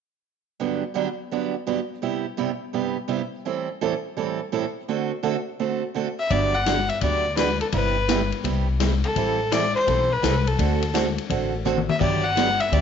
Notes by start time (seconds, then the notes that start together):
0.60 G2 D3 F#3 B3 D4 G4
0.94 G2 D3 F#3 B3 D4 G4
1.31 G2 D3 F#3 B3 D4 G4
1.67 G2 D3 F#3 B3 D4 G4
2.02 G2 C3 G3 B3 E4 G4
2.37 G2 C3 G3 B3 E4 G4
2.73 G2 C3 G3 B3 E4 G4
3.08 G2 C3 G3 B3 E4 G4
3.45 A2 E3 G3 C4 E4 A4
3.81 A2 E3 G3 C4 E4 A4
4.17 A2 E3 G3 C4 E4 A4
4.52 A2 E3 G3 C4 E4 A4
4.88 D3 A3 C4 F#4 A4
5.23 D3 A3 C4 F#4 A4
5.59 D3 A3 C4 F#4 A4
5.94 D3 A3 C4 F#4 A4
6.19 E5
6.30 G1 D3 F#3 B3 D4 G4 D5, kick, ride
6.55 F#5
6.66 D3 F#3 B3 D4 G4, snare, hi-hat pedal, ride
6.89 E5, ride
7.01 D2 D3 F#3 B3 D4 G4 D5, kick, ride
7.36 D3 F#3 B3 D4 G4 B4, snare, hi-hat pedal, ride
7.61 A4, ride
7.72 G1 C3 G3 B3 E4 G4 B4, kick, ride
8.08 C3 G3 B3 E4 G4, snare, hi-hat pedal, ride
8.32 ride
8.44 C2 C3 G3 B3 E4 G4, kick, ride
8.80 C3 G3 B3 E4 G4, snare, hi-hat pedal, ride
9.04 A4, ride
9.16 A1 E3 G3 C4 E4 A4, kick, ride
9.52 E3 G3 C4 E4 A4 D5, snare, hi-hat pedal, ride
9.75 C5
9.87 B1 E3 G3 C4 E4 A4, kick, ride
10.12 B4
10.22 C2 E3 G3 C4 E4 A4, snare, hi-hat pedal, ride
10.47 A4, ride
10.58 D2 D3 A3 C4 F#4 A4, kick, ride
10.82 ride
10.94 D3 A3 C4 F#4 A4, snare, hi-hat pedal, ride
11.18 ride
11.30 A1 D3 A3 C4 F#4 A4, kick, ride
11.65 D3 A3 C4 F#4 A4, hi-hat pedal, mid tom
11.78 mid tom
11.89 E5, mid tom
12.00 G1 D3 F#3 B3 D4 G4 D5, kick, crash
12.24 F#5
12.36 D3 F#3 B3 D4 G4, snare, hi-hat pedal, ride
12.60 E5, ride
12.72 D2 D3 F#3 B3 D4 G4 D5, kick, ride